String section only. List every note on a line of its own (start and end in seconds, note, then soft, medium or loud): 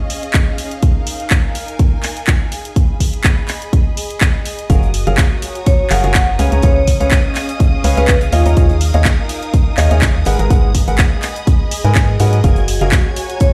0.00 1.36 C#4 medium
0.00 1.36 G#4 medium
0.00 1.36 D#5 medium
0.00 3.40 F5 medium
0.59 3.40 D#4 medium
0.95 2.52 A#4 medium
1.31 3.40 G#5 medium
2.52 5.38 G#4 medium
2.80 4.70 B5 medium
3.06 5.38 D#5 medium
4.70 6.39 F#4 medium
5.11 7.17 C#5 medium
5.15 7.17 A#5 medium
5.45 7.17 G#5 medium
6.39 9.11 C#4 medium
6.77 9.11 G#4 medium
6.88 8.95 D#5 medium
6.97 11.14 F5 medium
8.33 11.14 D#4 medium
8.51 10.26 A#4 medium
9.10 11.14 G#5 medium
10.26 13.12 G#4 medium
10.71 13.12 D#5 medium
10.93 12.44 B5 medium
12.44 13.53 F#4 medium
12.61 13.53 C#5 medium
13.13 13.53 G#5 medium
13.21 13.53 A#5 medium